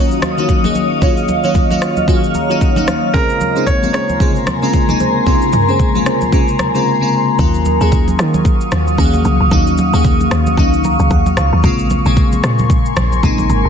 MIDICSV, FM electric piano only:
0, 0, Header, 1, 2, 480
1, 0, Start_track
1, 0, Tempo, 530973
1, 921, Time_signature, 4, 2, 24, 8
1, 12378, End_track
2, 0, Start_track
2, 0, Title_t, "FM electric piano"
2, 0, Program_c, 0, 5
2, 0, Control_c, 0, 64, 127
2, 0, Note_on_c, 0, 51, 84
2, 0, Note_on_c, 0, 54, 81
2, 0, Note_on_c, 0, 58, 78
2, 0, Note_on_c, 0, 61, 78
2, 0, Note_on_c, 0, 65, 94
2, 0, Note_on_c, 0, 66, 97
2, 256, Note_off_c, 0, 51, 0
2, 258, Note_off_c, 0, 54, 0
2, 259, Note_off_c, 0, 58, 0
2, 261, Note_off_c, 0, 61, 0
2, 262, Note_off_c, 0, 66, 0
2, 339, Note_on_c, 0, 51, 85
2, 344, Note_on_c, 0, 54, 83
2, 347, Note_on_c, 0, 58, 81
2, 349, Note_on_c, 0, 61, 80
2, 354, Note_on_c, 0, 63, 98
2, 524, Note_off_c, 0, 51, 0
2, 526, Note_off_c, 0, 54, 0
2, 528, Note_off_c, 0, 58, 0
2, 529, Note_off_c, 0, 61, 0
2, 531, Note_off_c, 0, 63, 0
2, 580, Note_on_c, 0, 51, 93
2, 584, Note_on_c, 0, 54, 83
2, 587, Note_on_c, 0, 58, 83
2, 591, Note_on_c, 0, 61, 82
2, 594, Note_on_c, 0, 68, 100
2, 861, Note_off_c, 0, 51, 0
2, 862, Note_off_c, 0, 54, 0
2, 864, Note_off_c, 0, 58, 0
2, 866, Note_off_c, 0, 61, 0
2, 867, Note_off_c, 0, 68, 0
2, 923, Note_on_c, 0, 51, 88
2, 925, Note_on_c, 0, 54, 78
2, 929, Note_on_c, 0, 58, 79
2, 932, Note_on_c, 0, 61, 75
2, 935, Note_off_c, 0, 65, 0
2, 935, Note_on_c, 0, 65, 92
2, 1218, Note_off_c, 0, 51, 0
2, 1219, Note_off_c, 0, 54, 0
2, 1221, Note_off_c, 0, 58, 0
2, 1222, Note_off_c, 0, 61, 0
2, 1224, Note_off_c, 0, 65, 0
2, 1302, Note_on_c, 0, 51, 88
2, 1304, Note_on_c, 0, 54, 80
2, 1308, Note_on_c, 0, 58, 82
2, 1311, Note_on_c, 0, 61, 80
2, 1315, Note_on_c, 0, 65, 94
2, 1485, Note_off_c, 0, 51, 0
2, 1487, Note_off_c, 0, 54, 0
2, 1489, Note_off_c, 0, 58, 0
2, 1490, Note_off_c, 0, 61, 0
2, 1492, Note_off_c, 0, 65, 0
2, 1541, Note_on_c, 0, 51, 87
2, 1544, Note_on_c, 0, 54, 82
2, 1547, Note_on_c, 0, 58, 78
2, 1550, Note_on_c, 0, 61, 80
2, 1554, Note_on_c, 0, 65, 91
2, 1821, Note_off_c, 0, 51, 0
2, 1822, Note_off_c, 0, 54, 0
2, 1824, Note_off_c, 0, 58, 0
2, 1826, Note_off_c, 0, 61, 0
2, 1827, Note_off_c, 0, 65, 0
2, 1881, Note_on_c, 0, 51, 90
2, 1884, Note_on_c, 0, 54, 83
2, 1887, Note_on_c, 0, 58, 81
2, 1891, Note_on_c, 0, 61, 80
2, 1894, Note_on_c, 0, 68, 100
2, 2126, Note_on_c, 0, 82, 71
2, 2177, Note_off_c, 0, 51, 0
2, 2178, Note_off_c, 0, 54, 0
2, 2180, Note_off_c, 0, 58, 0
2, 2182, Note_off_c, 0, 61, 0
2, 2183, Note_off_c, 0, 68, 0
2, 2259, Note_on_c, 0, 51, 92
2, 2263, Note_on_c, 0, 54, 83
2, 2267, Note_on_c, 0, 58, 83
2, 2270, Note_on_c, 0, 61, 84
2, 2274, Note_on_c, 0, 63, 97
2, 2347, Note_off_c, 0, 82, 0
2, 2366, Note_on_c, 0, 78, 73
2, 2444, Note_off_c, 0, 51, 0
2, 2446, Note_off_c, 0, 54, 0
2, 2448, Note_off_c, 0, 58, 0
2, 2449, Note_off_c, 0, 61, 0
2, 2452, Note_off_c, 0, 63, 0
2, 2496, Note_on_c, 0, 51, 91
2, 2501, Note_on_c, 0, 54, 84
2, 2504, Note_on_c, 0, 58, 82
2, 2507, Note_on_c, 0, 61, 83
2, 2511, Note_on_c, 0, 63, 97
2, 2587, Note_off_c, 0, 78, 0
2, 2604, Note_on_c, 0, 77, 76
2, 2779, Note_off_c, 0, 51, 0
2, 2781, Note_off_c, 0, 54, 0
2, 2783, Note_off_c, 0, 58, 0
2, 2784, Note_off_c, 0, 61, 0
2, 2786, Note_off_c, 0, 63, 0
2, 2826, Note_off_c, 0, 77, 0
2, 2838, Note_on_c, 0, 49, 72
2, 2840, Note_on_c, 0, 56, 67
2, 2844, Note_on_c, 0, 58, 69
2, 2848, Note_on_c, 0, 60, 65
2, 2850, Note_on_c, 0, 65, 78
2, 2851, Control_c, 0, 64, 0
2, 3004, Control_c, 0, 64, 127
2, 3135, Note_off_c, 0, 49, 0
2, 3136, Note_off_c, 0, 56, 0
2, 3138, Note_off_c, 0, 58, 0
2, 3140, Note_off_c, 0, 60, 0
2, 3141, Note_off_c, 0, 65, 0
2, 3216, Note_on_c, 0, 49, 74
2, 3219, Note_on_c, 0, 56, 70
2, 3223, Note_on_c, 0, 58, 67
2, 3226, Note_on_c, 0, 60, 65
2, 3230, Note_on_c, 0, 63, 84
2, 3402, Note_off_c, 0, 49, 0
2, 3404, Note_off_c, 0, 56, 0
2, 3406, Note_off_c, 0, 58, 0
2, 3407, Note_off_c, 0, 60, 0
2, 3409, Note_off_c, 0, 63, 0
2, 3457, Note_on_c, 0, 49, 75
2, 3460, Note_on_c, 0, 56, 68
2, 3463, Note_on_c, 0, 58, 67
2, 3466, Note_on_c, 0, 60, 68
2, 3470, Note_on_c, 0, 65, 81
2, 3739, Note_off_c, 0, 49, 0
2, 3740, Note_off_c, 0, 56, 0
2, 3742, Note_off_c, 0, 58, 0
2, 3744, Note_off_c, 0, 60, 0
2, 3745, Note_off_c, 0, 65, 0
2, 3797, Note_on_c, 0, 49, 74
2, 3801, Note_on_c, 0, 56, 66
2, 3804, Note_on_c, 0, 58, 68
2, 3808, Note_on_c, 0, 48, 66
2, 3812, Note_on_c, 0, 65, 83
2, 4095, Note_off_c, 0, 49, 0
2, 4097, Note_off_c, 0, 56, 0
2, 4098, Note_off_c, 0, 58, 0
2, 4100, Note_off_c, 0, 48, 0
2, 4102, Note_off_c, 0, 65, 0
2, 4178, Note_on_c, 0, 49, 91
2, 4182, Note_on_c, 0, 56, 84
2, 4186, Note_on_c, 0, 58, 78
2, 4189, Note_on_c, 0, 60, 84
2, 4193, Note_on_c, 0, 65, 99
2, 4364, Note_off_c, 0, 49, 0
2, 4366, Note_off_c, 0, 56, 0
2, 4367, Note_off_c, 0, 58, 0
2, 4369, Note_off_c, 0, 60, 0
2, 4371, Note_off_c, 0, 65, 0
2, 4417, Note_on_c, 0, 49, 91
2, 4422, Note_on_c, 0, 56, 85
2, 4424, Note_on_c, 0, 58, 80
2, 4428, Note_on_c, 0, 48, 85
2, 4431, Note_on_c, 0, 63, 99
2, 4699, Note_off_c, 0, 49, 0
2, 4701, Note_off_c, 0, 56, 0
2, 4703, Note_off_c, 0, 58, 0
2, 4704, Note_off_c, 0, 48, 0
2, 4706, Note_off_c, 0, 63, 0
2, 4758, Note_on_c, 0, 49, 90
2, 4762, Note_on_c, 0, 56, 79
2, 4765, Note_on_c, 0, 58, 78
2, 4768, Note_on_c, 0, 61, 78
2, 4772, Note_on_c, 0, 65, 92
2, 5055, Note_off_c, 0, 49, 0
2, 5057, Note_off_c, 0, 56, 0
2, 5059, Note_off_c, 0, 58, 0
2, 5060, Note_off_c, 0, 61, 0
2, 5062, Note_off_c, 0, 65, 0
2, 5138, Note_on_c, 0, 49, 88
2, 5141, Note_on_c, 0, 56, 82
2, 5144, Note_on_c, 0, 58, 78
2, 5149, Note_on_c, 0, 60, 80
2, 5151, Note_on_c, 0, 68, 97
2, 5324, Note_off_c, 0, 49, 0
2, 5325, Note_off_c, 0, 56, 0
2, 5327, Note_off_c, 0, 58, 0
2, 5329, Note_off_c, 0, 60, 0
2, 5330, Note_off_c, 0, 68, 0
2, 5379, Note_on_c, 0, 49, 85
2, 5381, Note_on_c, 0, 56, 80
2, 5385, Note_on_c, 0, 58, 80
2, 5388, Note_on_c, 0, 48, 80
2, 5392, Note_on_c, 0, 65, 97
2, 5660, Note_off_c, 0, 49, 0
2, 5661, Note_off_c, 0, 56, 0
2, 5663, Note_off_c, 0, 58, 0
2, 5665, Note_off_c, 0, 48, 0
2, 5667, Note_off_c, 0, 65, 0
2, 5718, Note_on_c, 0, 49, 84
2, 5722, Note_on_c, 0, 56, 82
2, 5725, Note_on_c, 0, 58, 78
2, 5728, Note_on_c, 0, 48, 82
2, 5732, Note_on_c, 0, 65, 96
2, 6015, Note_off_c, 0, 49, 0
2, 6017, Note_off_c, 0, 56, 0
2, 6019, Note_off_c, 0, 58, 0
2, 6020, Note_off_c, 0, 48, 0
2, 6022, Note_off_c, 0, 65, 0
2, 6096, Note_on_c, 0, 49, 87
2, 6100, Note_on_c, 0, 56, 82
2, 6103, Note_on_c, 0, 58, 85
2, 6107, Note_on_c, 0, 60, 81
2, 6109, Note_on_c, 0, 65, 100
2, 6282, Note_off_c, 0, 49, 0
2, 6284, Note_off_c, 0, 56, 0
2, 6286, Note_off_c, 0, 58, 0
2, 6288, Note_off_c, 0, 60, 0
2, 6289, Note_off_c, 0, 65, 0
2, 6338, Note_on_c, 0, 49, 92
2, 6341, Note_on_c, 0, 56, 81
2, 6346, Note_on_c, 0, 58, 84
2, 6348, Note_on_c, 0, 60, 82
2, 6352, Note_on_c, 0, 65, 97
2, 6620, Note_off_c, 0, 49, 0
2, 6621, Note_off_c, 0, 56, 0
2, 6623, Note_off_c, 0, 58, 0
2, 6625, Note_off_c, 0, 60, 0
2, 6627, Note_off_c, 0, 65, 0
2, 6678, Note_on_c, 0, 51, 89
2, 6682, Note_on_c, 0, 54, 78
2, 6685, Note_on_c, 0, 58, 80
2, 6689, Note_on_c, 0, 61, 80
2, 6692, Note_on_c, 0, 65, 100
2, 6694, Control_c, 0, 64, 0
2, 6838, Control_c, 0, 64, 127
2, 6975, Note_off_c, 0, 51, 0
2, 6977, Note_off_c, 0, 54, 0
2, 6979, Note_off_c, 0, 58, 0
2, 6981, Note_off_c, 0, 61, 0
2, 6983, Note_off_c, 0, 65, 0
2, 7058, Note_on_c, 0, 51, 91
2, 7061, Note_on_c, 0, 54, 80
2, 7066, Note_on_c, 0, 58, 80
2, 7069, Note_on_c, 0, 61, 88
2, 7072, Note_on_c, 0, 68, 102
2, 7820, Note_off_c, 0, 51, 0
2, 7821, Note_off_c, 0, 54, 0
2, 7823, Note_off_c, 0, 58, 0
2, 7825, Note_off_c, 0, 61, 0
2, 7826, Note_off_c, 0, 68, 0
2, 8120, Note_on_c, 0, 51, 88
2, 8123, Note_on_c, 0, 53, 65
2, 8126, Note_on_c, 0, 58, 86
2, 8130, Note_on_c, 0, 61, 89
2, 8133, Note_on_c, 0, 68, 107
2, 8181, Note_on_c, 0, 54, 86
2, 8189, Note_off_c, 0, 53, 0
2, 8520, Note_off_c, 0, 51, 0
2, 8523, Note_off_c, 0, 58, 0
2, 8525, Note_off_c, 0, 61, 0
2, 8526, Note_off_c, 0, 68, 0
2, 8550, Note_off_c, 0, 54, 0
2, 8599, Note_on_c, 0, 51, 92
2, 8602, Note_on_c, 0, 54, 83
2, 8605, Note_on_c, 0, 58, 78
2, 8610, Note_on_c, 0, 61, 86
2, 8613, Note_on_c, 0, 63, 100
2, 8896, Note_off_c, 0, 51, 0
2, 8897, Note_off_c, 0, 54, 0
2, 8899, Note_off_c, 0, 58, 0
2, 8901, Note_off_c, 0, 61, 0
2, 8903, Note_off_c, 0, 63, 0
2, 8979, Note_on_c, 0, 51, 92
2, 8982, Note_on_c, 0, 54, 87
2, 8987, Note_on_c, 0, 58, 84
2, 8990, Note_on_c, 0, 61, 82
2, 8994, Note_on_c, 0, 68, 101
2, 9460, Note_off_c, 0, 51, 0
2, 9461, Note_off_c, 0, 54, 0
2, 9464, Note_off_c, 0, 58, 0
2, 9465, Note_off_c, 0, 61, 0
2, 9467, Note_off_c, 0, 68, 0
2, 9560, Note_on_c, 0, 51, 88
2, 9564, Note_on_c, 0, 54, 80
2, 9568, Note_on_c, 0, 58, 83
2, 9571, Note_on_c, 0, 61, 83
2, 9575, Note_on_c, 0, 63, 99
2, 9808, Note_on_c, 0, 82, 73
2, 10028, Note_off_c, 0, 82, 0
2, 10047, Note_on_c, 0, 78, 77
2, 10267, Note_off_c, 0, 78, 0
2, 10287, Note_on_c, 0, 77, 77
2, 10336, Note_off_c, 0, 51, 0
2, 10338, Note_off_c, 0, 54, 0
2, 10340, Note_off_c, 0, 58, 0
2, 10342, Note_off_c, 0, 61, 0
2, 10343, Note_off_c, 0, 63, 0
2, 10508, Note_off_c, 0, 77, 0
2, 10520, Note_on_c, 0, 49, 94
2, 10524, Note_on_c, 0, 56, 80
2, 10526, Note_on_c, 0, 58, 81
2, 10530, Note_on_c, 0, 60, 84
2, 10533, Control_c, 0, 64, 0
2, 10535, Note_on_c, 0, 65, 99
2, 10686, Control_c, 0, 64, 127
2, 10816, Note_off_c, 0, 49, 0
2, 10818, Note_off_c, 0, 56, 0
2, 10819, Note_off_c, 0, 58, 0
2, 10821, Note_off_c, 0, 60, 0
2, 10824, Note_off_c, 0, 65, 0
2, 10900, Note_on_c, 0, 49, 92
2, 10903, Note_on_c, 0, 56, 86
2, 10906, Note_on_c, 0, 58, 88
2, 10909, Note_on_c, 0, 60, 82
2, 10914, Note_on_c, 0, 68, 103
2, 11660, Note_off_c, 0, 49, 0
2, 11662, Note_off_c, 0, 56, 0
2, 11664, Note_off_c, 0, 58, 0
2, 11665, Note_off_c, 0, 60, 0
2, 11667, Note_off_c, 0, 68, 0
2, 11961, Note_on_c, 0, 49, 93
2, 11964, Note_on_c, 0, 56, 86
2, 11969, Note_on_c, 0, 58, 84
2, 11972, Note_on_c, 0, 60, 84
2, 11975, Note_on_c, 0, 63, 105
2, 12360, Note_off_c, 0, 49, 0
2, 12362, Note_off_c, 0, 56, 0
2, 12364, Note_off_c, 0, 58, 0
2, 12366, Note_off_c, 0, 60, 0
2, 12367, Note_off_c, 0, 63, 0
2, 12378, End_track
0, 0, End_of_file